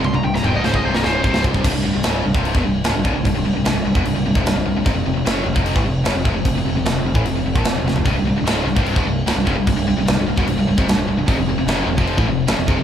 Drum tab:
CC |----------------|x---x---x---x---|x---x---x---x---|x---x---x---x---|
SD |---o--o--oo--o--|----o-------o---|----o-------o---|----o-------o---|
T1 |oo--------------|----------------|----------------|----------------|
T2 |----o-----------|----------------|----------------|----------------|
FT |----------------|----------------|----------------|----------------|
BD |-------o----o-oo|o------o-o----o-|o------o---o----|o------o-o----o-|

CC |x---x---x---x---|x---x---x---x---|x---x---x---x---|x---x---x---x---|
SD |----o-------o-o-|----o-------o---|----o-------o---|----o-------o---|
T1 |----------------|----------------|----------------|----------------|
T2 |----------------|----------------|----------------|----------------|
FT |---------------o|----------------|----------------|----------------|
BD |o------o---o----|o------o-o----o-|o------o---o----|o------o-o----o-|